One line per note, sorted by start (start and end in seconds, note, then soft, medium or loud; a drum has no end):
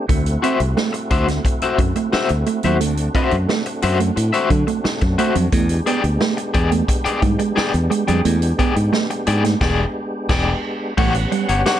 0.08 0.36 D2 loud
0.08 5.48 A3 medium
0.08 0.22 A3 medium
0.08 5.48 C4 medium
0.08 2.78 E4 medium
0.08 5.48 F#4 medium
0.08 kick loud
0.08 closed hi-hat loud
0.26 closed hi-hat medium
0.42 0.56 C4 medium
0.42 0.58 F#4 medium
0.42 0.58 C5 medium
0.42 0.59 E5 medium
0.42 closed hi-hat soft
0.60 0.73 C2 medium
0.60 muted clean electric guitar stroke soft
0.60 closed hi-hat soft
0.77 0.90 A3 medium
0.77 muted clean electric guitar stroke soft
0.77 snare medium
0.93 muted clean electric guitar stroke medium
0.93 closed hi-hat medium
1.10 1.38 D2 medium
1.10 1.26 F#4 medium
1.10 1.26 C5 medium
1.10 1.27 E5 medium
1.10 kick medium
1.10 closed hi-hat medium
1.28 1.40 A3 medium
1.28 muted clean electric guitar stroke soft
1.28 snare soft
1.28 closed hi-hat medium
1.45 muted clean electric guitar stroke soft
1.45 kick medium
1.45 closed hi-hat medium
1.62 1.78 F#4 medium
1.62 1.78 C5 medium
1.62 1.77 E5 medium
1.62 muted fingered electric bass stroke soft
1.62 closed hi-hat soft
1.78 1.92 F#2 medium
1.78 1.91 F#3 medium
1.78 muted clean electric guitar stroke soft
1.78 kick medium
1.78 closed hi-hat medium
1.96 2.08 A3 medium
1.96 muted clean electric guitar stroke soft
1.96 closed hi-hat soft
2.12 2.28 F#4 medium
2.12 2.28 C5 medium
2.12 2.29 E5 loud
2.12 muted clean electric guitar stroke soft
2.12 muted fingered electric bass stroke soft
2.12 snare loud
2.29 2.43 D2 medium
2.29 closed hi-hat soft
2.46 2.59 A3 medium
2.46 muted clean electric guitar stroke soft
2.46 closed hi-hat medium
2.63 2.81 D#2 medium
2.63 2.76 F#3 medium
2.63 2.77 F#4 medium
2.63 2.76 C5 medium
2.63 2.76 E5 medium
2.63 closed hi-hat soft
2.80 3.08 D2 loud
2.80 2.93 A3 medium
2.80 10.94 D4 medium
2.80 closed hi-hat medium
2.97 closed hi-hat medium
3.15 3.27 C4 medium
3.15 3.35 F#4 medium
3.15 3.35 C5 medium
3.15 3.35 E5 medium
3.15 kick medium
3.15 closed hi-hat soft
3.31 3.45 F#2 medium
3.31 muted clean electric guitar stroke soft
3.31 closed hi-hat soft
3.49 3.61 A3 medium
3.49 muted clean electric guitar stroke soft
3.49 snare medium
3.66 muted clean electric guitar stroke soft
3.66 closed hi-hat soft
3.82 4.10 F#2 loud
3.82 3.98 F#4 medium
3.82 3.98 C5 medium
3.82 3.98 E5 medium
3.82 closed hi-hat medium
4.00 4.12 A3 medium
4.00 muted clean electric guitar stroke soft
4.00 closed hi-hat medium
4.16 4.30 A2 loud
4.16 muted clean electric guitar stroke soft
4.16 closed hi-hat medium
4.33 4.49 F#4 medium
4.33 4.49 C5 medium
4.33 4.48 E5 medium
4.33 closed hi-hat soft
4.50 4.64 D3 medium
4.50 4.63 F#3 medium
4.50 muted clean electric guitar stroke soft
4.50 kick medium
4.50 closed hi-hat medium
4.67 4.80 A3 medium
4.67 muted clean electric guitar stroke soft
4.67 closed hi-hat soft
4.84 muted clean electric guitar stroke soft
4.84 muted fingered electric bass stroke soft
4.84 snare loud
5.01 5.15 F#2 medium
5.01 muted clean electric guitar stroke soft
5.01 kick medium
5.01 snare soft
5.01 closed hi-hat soft
5.18 5.31 A3 medium
5.18 5.34 F#4 medium
5.18 5.34 C5 medium
5.18 5.34 E5 medium
5.18 closed hi-hat medium
5.35 5.49 F2 medium
5.35 5.48 F#3 medium
5.35 muted clean electric guitar stroke soft
5.35 closed hi-hat medium
5.52 5.79 E2 loud
5.52 10.94 G#3 medium
5.52 5.65 A3 medium
5.52 10.94 B3 medium
5.52 10.94 G4 medium
5.52 kick loud
5.52 closed hi-hat loud
5.69 closed hi-hat medium
5.86 5.99 B3 medium
5.86 6.02 G#4 medium
5.86 6.02 D5 loud
5.86 6.02 G5 loud
5.86 closed hi-hat medium
6.04 6.17 D2 medium
6.04 muted clean electric guitar stroke soft
6.04 closed hi-hat soft
6.21 6.33 A3 medium
6.21 muted clean electric guitar stroke soft
6.21 snare loud
6.37 muted clean electric guitar stroke medium
6.37 closed hi-hat medium
6.54 6.81 E2 medium
6.54 6.69 G#4 medium
6.54 6.70 D5 medium
6.54 6.70 G5 medium
6.54 kick medium
6.54 closed hi-hat medium
6.71 6.84 A3 medium
6.71 muted clean electric guitar stroke soft
6.71 closed hi-hat medium
6.88 muted clean electric guitar stroke soft
6.88 kick medium
6.88 closed hi-hat loud
7.05 7.20 G#4 medium
7.05 7.21 D5 medium
7.05 7.20 G5 loud
7.05 muted fingered electric bass stroke medium
7.05 closed hi-hat medium
7.22 7.36 G#2 medium
7.22 7.35 G3 medium
7.22 muted clean electric guitar stroke soft
7.22 kick medium
7.22 closed hi-hat medium
7.39 7.52 G#3 medium
7.39 muted clean electric guitar stroke soft
7.39 closed hi-hat soft
7.56 7.72 G#4 loud
7.56 7.72 D5 medium
7.56 7.72 G5 loud
7.56 muted clean electric guitar stroke soft
7.56 muted fingered electric bass stroke soft
7.56 snare loud
7.74 7.87 E2 medium
7.74 closed hi-hat soft
7.90 8.03 G#3 medium
7.90 muted clean electric guitar stroke soft
7.90 closed hi-hat medium
8.08 8.22 F2 medium
8.08 8.20 G3 medium
8.08 8.20 G#4 soft
8.08 8.20 D5 medium
8.08 8.20 G5 medium
8.08 closed hi-hat soft
8.25 8.52 E2 loud
8.25 8.38 A3 medium
8.25 closed hi-hat medium
8.42 closed hi-hat medium
8.59 8.71 B3 medium
8.59 8.74 G#4 medium
8.59 8.75 D5 medium
8.59 8.75 G5 loud
8.59 kick medium
8.59 closed hi-hat medium
8.76 8.89 G#2 medium
8.76 muted clean electric guitar stroke soft
8.76 closed hi-hat soft
8.92 9.05 A3 medium
8.92 muted clean electric guitar stroke soft
8.92 snare loud
9.10 muted clean electric guitar stroke medium
9.10 closed hi-hat soft
9.27 9.54 G#2 medium
9.27 9.42 G#4 medium
9.27 9.43 D5 medium
9.27 9.43 G5 medium
9.27 closed hi-hat medium
9.44 9.57 A3 medium
9.44 muted clean electric guitar stroke soft
9.44 snare soft
9.44 closed hi-hat medium
9.61 9.84 E1 loud
9.61 9.85 G#4 medium
9.61 9.85 D5 loud
9.61 9.84 G5 medium
9.61 kick loud
9.61 snare medium
9.61 crash medium
10.29 10.53 E1 loud
10.29 10.53 G#4 loud
10.29 10.53 D5 loud
10.29 10.53 G5 loud
10.29 kick loud
10.29 snare loud
10.29 crash medium
10.97 11.25 A1 loud
10.97 11.80 G3 medium
10.97 11.10 A3 medium
10.97 11.80 B3 medium
10.97 11.80 C#4 medium
10.97 11.13 G4 medium
10.97 11.13 C#5 loud
10.97 11.80 F#5 medium
10.97 11.13 F#5 loud
10.97 kick loud
10.97 crash loud
11.14 muted clean electric guitar stroke medium
11.14 closed hi-hat medium
11.32 11.44 G3 medium
11.32 muted clean electric guitar stroke soft
11.32 closed hi-hat medium
11.49 11.62 G1 medium
11.49 11.61 G4 soft
11.49 11.61 C#5 medium
11.49 11.61 F#5 medium
11.49 closed hi-hat soft
11.66 11.80 G4 medium
11.66 11.80 C#5 medium
11.66 11.80 F#5 loud
11.66 muted clean electric guitar stroke soft
11.66 snare loud
11.66 closed hi-hat medium